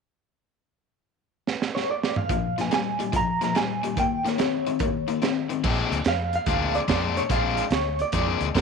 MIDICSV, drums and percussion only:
0, 0, Header, 1, 2, 480
1, 0, Start_track
1, 0, Tempo, 417827
1, 713, Time_signature, 4, 2, 24, 8
1, 9893, End_track
2, 0, Start_track
2, 0, Title_t, "Drums"
2, 1693, Note_on_c, 9, 38, 59
2, 1808, Note_off_c, 9, 38, 0
2, 1860, Note_on_c, 9, 38, 72
2, 1975, Note_off_c, 9, 38, 0
2, 2026, Note_on_c, 9, 38, 62
2, 2141, Note_off_c, 9, 38, 0
2, 2337, Note_on_c, 9, 38, 86
2, 2452, Note_off_c, 9, 38, 0
2, 2484, Note_on_c, 9, 45, 84
2, 2599, Note_off_c, 9, 45, 0
2, 2635, Note_on_c, 9, 36, 94
2, 2637, Note_on_c, 9, 42, 74
2, 2749, Note_off_c, 9, 36, 0
2, 2752, Note_off_c, 9, 42, 0
2, 2964, Note_on_c, 9, 42, 59
2, 2982, Note_on_c, 9, 38, 29
2, 3079, Note_off_c, 9, 42, 0
2, 3097, Note_off_c, 9, 38, 0
2, 3115, Note_on_c, 9, 42, 76
2, 3132, Note_on_c, 9, 38, 92
2, 3230, Note_off_c, 9, 42, 0
2, 3247, Note_off_c, 9, 38, 0
2, 3441, Note_on_c, 9, 42, 58
2, 3556, Note_off_c, 9, 42, 0
2, 3596, Note_on_c, 9, 42, 85
2, 3597, Note_on_c, 9, 36, 102
2, 3711, Note_off_c, 9, 42, 0
2, 3712, Note_off_c, 9, 36, 0
2, 3921, Note_on_c, 9, 42, 55
2, 3938, Note_on_c, 9, 38, 27
2, 4036, Note_off_c, 9, 42, 0
2, 4053, Note_off_c, 9, 38, 0
2, 4076, Note_on_c, 9, 42, 69
2, 4093, Note_on_c, 9, 38, 83
2, 4191, Note_off_c, 9, 42, 0
2, 4208, Note_off_c, 9, 38, 0
2, 4407, Note_on_c, 9, 42, 60
2, 4522, Note_off_c, 9, 42, 0
2, 4557, Note_on_c, 9, 42, 67
2, 4561, Note_on_c, 9, 36, 96
2, 4672, Note_off_c, 9, 42, 0
2, 4675, Note_off_c, 9, 36, 0
2, 4891, Note_on_c, 9, 42, 58
2, 4908, Note_on_c, 9, 38, 28
2, 5006, Note_off_c, 9, 42, 0
2, 5023, Note_off_c, 9, 38, 0
2, 5034, Note_on_c, 9, 42, 70
2, 5052, Note_on_c, 9, 38, 93
2, 5149, Note_off_c, 9, 42, 0
2, 5166, Note_off_c, 9, 38, 0
2, 5358, Note_on_c, 9, 42, 54
2, 5473, Note_off_c, 9, 42, 0
2, 5506, Note_on_c, 9, 42, 71
2, 5516, Note_on_c, 9, 36, 112
2, 5621, Note_off_c, 9, 42, 0
2, 5631, Note_off_c, 9, 36, 0
2, 5833, Note_on_c, 9, 42, 53
2, 5948, Note_off_c, 9, 42, 0
2, 5994, Note_on_c, 9, 42, 64
2, 6011, Note_on_c, 9, 38, 91
2, 6109, Note_off_c, 9, 42, 0
2, 6126, Note_off_c, 9, 38, 0
2, 6317, Note_on_c, 9, 42, 60
2, 6432, Note_off_c, 9, 42, 0
2, 6478, Note_on_c, 9, 36, 112
2, 6478, Note_on_c, 9, 49, 93
2, 6593, Note_off_c, 9, 36, 0
2, 6593, Note_off_c, 9, 49, 0
2, 6802, Note_on_c, 9, 42, 66
2, 6917, Note_off_c, 9, 42, 0
2, 6944, Note_on_c, 9, 42, 83
2, 6961, Note_on_c, 9, 38, 108
2, 7059, Note_off_c, 9, 42, 0
2, 7076, Note_off_c, 9, 38, 0
2, 7271, Note_on_c, 9, 42, 63
2, 7386, Note_off_c, 9, 42, 0
2, 7424, Note_on_c, 9, 42, 84
2, 7428, Note_on_c, 9, 36, 111
2, 7539, Note_off_c, 9, 42, 0
2, 7543, Note_off_c, 9, 36, 0
2, 7748, Note_on_c, 9, 42, 52
2, 7863, Note_off_c, 9, 42, 0
2, 7904, Note_on_c, 9, 42, 66
2, 7906, Note_on_c, 9, 36, 69
2, 7921, Note_on_c, 9, 38, 97
2, 8019, Note_off_c, 9, 42, 0
2, 8021, Note_off_c, 9, 36, 0
2, 8036, Note_off_c, 9, 38, 0
2, 8235, Note_on_c, 9, 42, 69
2, 8350, Note_off_c, 9, 42, 0
2, 8383, Note_on_c, 9, 42, 84
2, 8384, Note_on_c, 9, 36, 101
2, 8498, Note_off_c, 9, 42, 0
2, 8499, Note_off_c, 9, 36, 0
2, 8698, Note_on_c, 9, 42, 65
2, 8813, Note_off_c, 9, 42, 0
2, 8851, Note_on_c, 9, 42, 72
2, 8868, Note_on_c, 9, 38, 104
2, 8966, Note_off_c, 9, 42, 0
2, 8983, Note_off_c, 9, 38, 0
2, 9178, Note_on_c, 9, 42, 55
2, 9293, Note_off_c, 9, 42, 0
2, 9330, Note_on_c, 9, 42, 88
2, 9339, Note_on_c, 9, 36, 102
2, 9445, Note_off_c, 9, 42, 0
2, 9454, Note_off_c, 9, 36, 0
2, 9656, Note_on_c, 9, 42, 54
2, 9771, Note_off_c, 9, 42, 0
2, 9823, Note_on_c, 9, 36, 59
2, 9824, Note_on_c, 9, 42, 69
2, 9841, Note_on_c, 9, 38, 98
2, 9893, Note_off_c, 9, 36, 0
2, 9893, Note_off_c, 9, 38, 0
2, 9893, Note_off_c, 9, 42, 0
2, 9893, End_track
0, 0, End_of_file